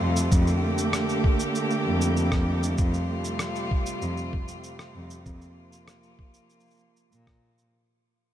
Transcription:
Already playing: C3 G3 A3 F4
0.01 F2
0.16 shaker
0.31 F2 D3 A#3 G4, kick, shaker
0.47 shaker
0.78 shaker
0.93 cross-stick, shaker
1.09 shaker
1.24 kick
1.40 shaker
1.55 shaker
1.70 shaker
1.86 F2
2.01 shaker
2.17 shaker
2.32 kick, cross-stick, shaker
2.63 shaker
2.78 F2 C3 G3 F4, kick, shaker
2.94 shaker
3.24 shaker
3.39 cross-stick, shaker
3.55 shaker
3.71 kick
3.86 shaker
4.02 F2, shaker
4.17 shaker
4.33 kick
4.48 shaker
4.64 shaker
4.79 cross-stick, shaker
4.95 F2
5.10 shaker
5.26 F2 F3 A#3 F4, kick, shaker
5.42 shaker
5.72 shaker
5.88 cross-stick, shaker
6.03 shaker
6.19 kick
6.34 shaker
6.50 shaker
6.60 shaker
6.66 shaker
6.68 shaker
6.70 shaker
6.72 shaker
6.74 shaker
6.77 shaker
6.79 shaker
6.97 shaker
7.12 A#2, shaker
7.27 kick, cross-stick, shaker
7.58 shaker

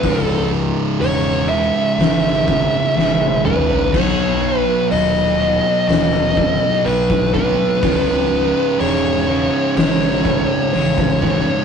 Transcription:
Already playing: B4
0.03 C#1 C#2 G#2 C#3, kick, open hi-hat
0.22 A4
1.00 E1 C#2 G#2 C#3 C#5, open hi-hat
1.49 C#2 G#2 C#3 E5
1.98 G#1 C#2 G#2 C#3, snare, open hi-hat
2.25 snare
2.48 kick
2.95 G#1 C#2 G#2 C#3, snare
3.21 high tom
3.44 C#2 G#2 C#3 B4, mid tom
3.70 floor tom
3.93 B1 B2 F#3 B3 C#5, kick, crash
4.59 B4
4.90 D#1 B2 F#3 B3 D#5, open hi-hat
5.39 B2 F#3 B3
5.88 D#1 B2 F#3 B3 D#5, snare, open hi-hat
6.37 kick
6.85 B1 B2 F#3 B3 B4, open hi-hat
7.10 kick
7.33 B2 F#3 B3 B4, kick
7.82 C#1 C#2 G#2 C#3, kick, open hi-hat
8.78 E1 C#2 G#2 C#3 C#5, open hi-hat
9.28 C#2 G#2 C#3
9.76 G#1 C#2 G#2 C#3 C#5, snare, open hi-hat
10.25 kick
10.73 A1 C#2 G#2 C#3 C#5, open hi-hat
10.98 kick
11.22 C#2 G#2 C#3, kick

